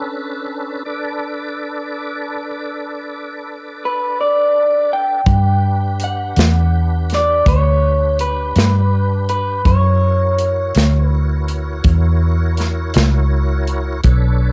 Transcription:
Already playing: tonewheel organ C#4 D4 A4 B4
0.85 tonewheel organ D4 A4 B4 D5
3.85 clean electric guitar B4
4.21 clean electric guitar D5
4.93 clean electric guitar G5
5.26 fingered electric bass G2, tonewheel organ D4 G4 B4, kick, closed hi-hat
6.00 closed hi-hat
6.04 clean electric guitar F#5
6.36 fingered electric bass E2, snare, closed hi-hat
7.10 snare, closed hi-hat
7.14 clean electric guitar D5
7.46 fingered electric bass D2, clean electric guitar C#5, kick, closed hi-hat
8.19 clean electric guitar B4, closed hi-hat
8.56 fingered electric bass G2, snare, closed hi-hat
9.29 clean electric guitar B4, closed hi-hat
9.65 fingered electric bass F#2, tonewheel organ E4 F#4 A#4 C#5, clean electric guitar C#5, kick, closed hi-hat
10.38 closed hi-hat
10.75 fingered electric bass D2, snare, closed hi-hat
11.06 clean electric guitar B4
11.48 closed hi-hat
11.84 fingered electric bass E2, kick, closed hi-hat
12.57 snare, closed hi-hat
12.94 fingered electric bass C#2, snare, closed hi-hat
13.67 closed hi-hat
14.04 fingered electric bass B1, tonewheel organ D4 A4 B4 C#5, kick, closed hi-hat

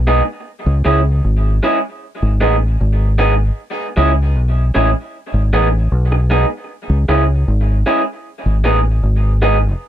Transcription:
Already playing: fingered electric bass B1
0.07 clean electric guitar G#3 B3 D#4 G#4
0.66 fingered electric bass C#2
0.85 fingered electric bass C#2, clean electric guitar G#3 C#4 E4 G#4
1.24 fingered electric bass G#1
1.63 clean electric guitar G#3 C#4 E4 G#4
2.22 fingered electric bass G#1
2.41 fingered electric bass A1, clean electric guitar G#3 B3 D#4 G#4
2.81 fingered electric bass G#1
3.18 clean electric guitar G#3 B3 D#4 G#4
3.97 fingered electric bass C#2, clean electric guitar G#3 C#4 E4 G#4
4.36 fingered electric bass B1
4.75 fingered electric bass A1, clean electric guitar G#3 C#4 E4 G#4
5.34 fingered electric bass G#1
5.53 fingered electric bass A1, clean electric guitar G#3 B3 D#4 G#4
5.92 fingered electric bass B1
6.12 muted clean electric guitar stroke
6.30 clean electric guitar G#3 B3 D#4 G#4
6.89 fingered electric bass C#2
7.09 fingered electric bass C#2, clean electric guitar G#3 C#4 E4 G#4
7.48 fingered electric bass G#1
7.86 clean electric guitar G#3 C#4 E4 G#4
8.46 fingered electric bass G#1
8.64 fingered electric bass A1, clean electric guitar G#3 B3 D#4 G#4
9.03 fingered electric bass G#1
9.42 clean electric guitar G#3 B3 D#4 G#4

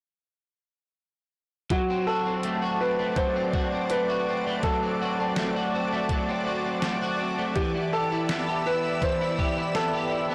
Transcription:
1.70 clean electric guitar F#3, felt piano F#4, ambient pad D5 F#5 A5 D6, kick, closed hi-hat
1.90 clean electric guitar C4
2.07 clean electric guitar F#4, felt piano A4
2.26 clean electric guitar C4
2.43 clean electric guitar A3, closed hi-hat
2.62 clean electric guitar F#4
2.80 clean electric guitar C4, felt piano B4
2.99 clean electric guitar A3
3.16 clean electric guitar F#3, felt piano C5, kick, closed hi-hat
3.36 clean electric guitar C4
3.54 clean electric guitar F#4, kick
3.73 clean electric guitar C4
3.90 clean electric guitar A3, felt piano B4, closed hi-hat
4.10 clean electric guitar F#4
4.29 clean electric guitar C4
4.46 clean electric guitar A3
4.63 clean electric guitar F#3, felt piano A4, kick, closed hi-hat
4.83 clean electric guitar C4
5.02 clean electric guitar F#4
5.20 clean electric guitar C4
5.36 clean electric guitar A3, snare, closed hi-hat
5.56 clean electric guitar F#4
5.74 clean electric guitar C4
5.93 clean electric guitar A3
6.09 clean electric guitar F#3, kick, closed hi-hat
6.29 clean electric guitar C4
6.47 clean electric guitar F#4
6.65 clean electric guitar C4
6.82 clean electric guitar A3, snare, closed hi-hat
7.02 clean electric guitar F#4
7.20 clean electric guitar C4
7.38 clean electric guitar A3
7.55 clean electric guitar E3, felt piano G4, ambient pad E5 B5 E6, kick, closed hi-hat
7.75 clean electric guitar E4
7.93 clean electric guitar G4, felt piano A4
8.12 clean electric guitar E4
8.29 clean electric guitar B3, snare, closed hi-hat
8.49 clean electric guitar G4
8.66 clean electric guitar E4, felt piano B4
9.02 clean electric guitar E3, felt piano C5, kick, closed hi-hat
9.21 clean electric guitar E4
9.39 clean electric guitar G4, kick
9.57 clean electric guitar E4
9.75 clean electric guitar B3, felt piano A4, snare, closed hi-hat
9.93 clean electric guitar G4
10.11 clean electric guitar E4
10.30 clean electric guitar B3

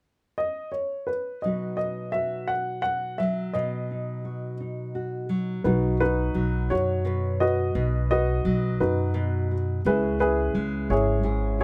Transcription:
0.38 grand piano D#5
0.72 grand piano C#5
1.07 grand piano B4
1.42 nylon-string guitar B2 F#3 D#4 F#4, grand piano D#5
1.47 nylon-string guitar B4
1.77 grand piano D#5
2.12 nylon-string guitar F#4, grand piano E5
2.48 grand piano F#5
2.82 nylon-string guitar F#4, grand piano F#5
3.18 nylon-string guitar F#3, grand piano E5
3.54 nylon-string guitar B2, grand piano D#5
3.91 nylon-string guitar D#4
4.25 nylon-string guitar F#4
4.60 nylon-string guitar D#4
4.95 nylon-string guitar F#4
5.29 nylon-string guitar F#3
5.64 upright bass B1, nylon-string guitar B2 F#3 D#4 F#4, grand piano D#4 F#4 B4
6.00 nylon-string guitar D#4, grand piano D#4 F#4 B4
6.34 upright bass B1, nylon-string guitar F#3 F#4
6.70 upright bass F#2, grand piano F#4 C#5
7.05 nylon-string guitar B2 B4
7.40 nylon-string guitar F#4, grand piano F#4 B4 D#5
7.75 upright bass B1, nylon-string guitar B2 B4
8.11 nylon-string guitar D#4, grand piano F#4 B4 D#5
8.45 upright bass B1, nylon-string guitar F#3 F#4
8.80 upright bass F#2, grand piano D#4 F#4 B4
9.14 nylon-string guitar B2 F#4
9.51 nylon-string guitar F#4
9.85 upright bass C#2, nylon-string guitar C#3 G#3 C#4 E4 G#4, grand piano E4 G#4 B4
10.20 nylon-string guitar C#4, grand piano E4 G#4 B4
10.55 upright bass C#2, nylon-string guitar G#3 E4
10.90 upright bass G#1, grand piano E4 G#4 C#5
11.23 nylon-string guitar G#2 G#4
11.59 nylon-string guitar E4, grand piano C#5

